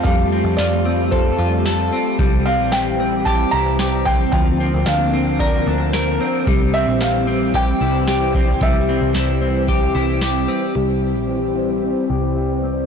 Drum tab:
HH |x-x-x-x-|x-x-x-x-|x-x-x-x-|x-x-x-x-|
TB |--x---x-|--x---x-|--x---x-|--x---x-|
SD |--o---o-|--o---o-|--o---o-|--o---o-|
BD |o---o---|o---o--o|o---o---|o---o--o|

HH |x-x-x-x-|--------|
TB |--x---x-|--------|
SD |--o---o-|--------|
BD |o---o---|--------|